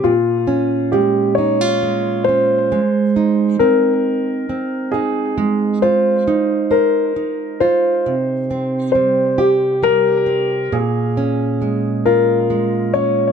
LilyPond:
<<
  \new Staff \with { instrumentName = "Grand piano" } { \time 6/8 \key bes \dorian \tempo 4. = 45 f'4 g'8 des''4 c''8~ | c''4 bes'4. aes'8~ | aes'8 c''4 bes'4 c''8~ | c''4 c''8 g'8 bes'4 |
aes'4. bes'4 des''8 | }
  \new Staff \with { instrumentName = "Steel-string acoustic guitar" } { \time 6/8 \key bes \dorian bes,8 des'8 aes8 ees'16 f'16 aes8 des'8 | aes8 ees'8 c'4 c'8 ees'8 | aes8 f'8 ees'8 c''8 ees'8 f'8 | c8 c'8 g8 g'8 g8 c'8 |
bes,8 des'8 aes8 f'8 aes8 des'8 | }
>>